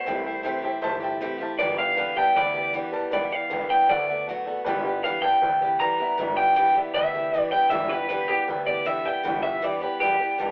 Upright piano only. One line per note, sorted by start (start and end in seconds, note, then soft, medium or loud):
0.05 0.17 C5 medium
0.05 0.18 E5 medium
0.05 0.18 G5 loud
0.24 0.36 C5 medium
0.24 0.37 E5 medium
0.24 0.37 G5 medium
0.43 0.55 C5 loud
0.43 0.56 E5 medium
0.43 0.56 G5 loud
0.63 0.75 C5 medium
0.63 0.76 E5 medium
0.63 0.76 G5 loud
0.82 0.94 C5 loud
0.82 0.94 E5 loud
0.82 0.95 A5 loud
1.02 1.14 C5 medium
1.02 1.14 E5 medium
1.02 1.14 G5 loud
1.02 1.20 A5 medium
1.21 1.32 C5 medium
1.21 1.33 E5 medium
1.21 1.33 G5 loud
1.41 1.52 C5 medium
1.41 1.52 E5 medium
1.41 1.58 F5 medium
1.41 1.53 A5 medium
1.59 1.71 B4 medium
1.59 1.71 D5 medium
1.59 1.72 G5 loud
1.78 1.90 B4 medium
1.78 1.90 D5 medium
1.78 1.91 G5 medium
1.97 2.09 B4 medium
1.97 2.09 D5 medium
1.97 2.10 G5 medium
2.16 2.28 B4 medium
2.16 2.29 D5 medium
2.16 2.29 A5 medium
2.36 2.47 B4 loud
2.36 2.48 D5 loud
2.36 2.48 G5 loud
2.54 2.66 B4 medium
2.54 2.67 D5 medium
2.54 2.67 G5 medium
2.73 2.85 B4 medium
2.73 2.86 D5 medium
2.73 2.86 G5 medium
2.92 3.04 B4 medium
2.92 3.05 D5 medium
2.92 3.05 A5 loud
3.11 3.23 B4 medium
3.11 3.24 D5 medium
3.11 3.24 G5 medium
3.30 3.43 B4 medium
3.30 3.43 D5 medium
3.30 3.44 G5 medium
3.50 3.62 B4 medium
3.50 3.62 D5 medium
3.50 3.63 G5 medium
3.68 3.81 B4 medium
3.68 3.81 D5 medium
3.68 3.82 G5 medium
3.88 4.00 A4 medium
3.88 4.00 D5 medium
3.88 4.01 F#5 loud
4.07 4.19 A4 medium
4.07 4.20 D5 medium
4.07 4.20 F#5 medium
4.26 4.38 A4 medium
4.26 4.39 D5 medium
4.26 4.39 F#5 medium
4.45 4.58 A4 medium
4.45 4.58 D5 medium
4.45 4.59 F#5 medium
4.65 4.77 B4 loud
4.65 4.77 D5 loud
4.65 4.78 G5 loud
4.84 4.96 B4 medium
4.84 4.97 D5 medium
4.84 4.97 G5 loud
5.04 5.16 B4 medium
5.04 5.16 D5 medium
5.04 5.16 G5 medium
5.23 5.35 B4 medium
5.23 5.35 D5 medium
5.23 5.36 A5 medium
5.42 5.54 B4 loud
5.42 5.54 D5 medium
5.42 5.55 G5 loud
5.61 5.73 B4 medium
5.61 5.73 D5 medium
5.61 5.74 G5 medium
5.81 5.92 B4 medium
5.81 5.93 D5 medium
5.81 5.93 G5 medium
6.00 6.11 B4 medium
6.00 6.12 D5 medium
6.00 6.12 E5 medium
6.19 6.31 B4 medium
6.19 6.31 D5 medium
6.19 6.31 E5 medium
6.38 6.50 B4 medium
6.38 6.50 D5 medium
6.38 6.50 G5 medium
6.57 6.69 B4 medium
6.57 6.69 D5 medium
6.57 6.70 G5 medium
6.76 6.88 B4 medium
6.76 6.88 D5 medium
6.76 6.89 E5 medium
6.94 7.06 B4 loud
6.94 7.07 D5 loud
6.94 7.07 G5 loud
7.14 7.26 B4 medium
7.14 7.27 D5 medium
7.14 7.27 G5 medium
7.33 7.45 B4 medium
7.33 7.45 D5 medium
7.33 7.46 G5 medium
7.52 7.64 B4 medium
7.52 7.64 D5 medium
7.52 7.65 G5 medium
7.72 7.84 B4 medium
7.72 7.84 D5 medium
7.72 7.84 G5 loud
7.91 8.02 B4 medium
7.91 8.03 D5 medium
7.91 8.04 G5 medium
8.10 8.22 B4 medium
8.10 8.22 D5 medium
8.10 8.23 G5 medium
8.30 8.41 B4 medium
8.30 8.42 D5 medium
8.30 8.42 G5 medium
8.48 8.60 B4 loud
8.48 8.61 D5 medium
8.48 8.61 G5 loud
8.67 8.79 B4 medium
8.67 8.79 D5 medium
8.67 8.80 G5 medium
8.86 8.98 B4 medium
8.86 8.99 D5 medium
8.86 8.99 G5 medium
9.05 9.17 B4 medium
9.05 9.18 D5 medium
9.05 9.18 E5 medium
9.25 9.37 B4 medium
9.25 9.37 D5 medium
9.25 9.38 G5 loud
9.44 9.55 B4 medium
9.44 9.56 D5 medium
9.44 9.56 G5 medium
9.63 9.74 B4 medium
9.63 9.75 D5 medium
9.63 9.76 G5 medium
9.82 9.93 B4 medium
9.82 9.94 D5 medium
9.82 9.94 G5 loud
10.01 10.12 B4 loud
10.01 10.13 D5 medium
10.01 10.14 G5 loud
10.20 10.32 B4 medium
10.20 10.32 D5 medium
10.20 10.32 G5 medium
10.38 10.50 B4 medium
10.38 10.51 D5 medium
10.38 10.51 A5 medium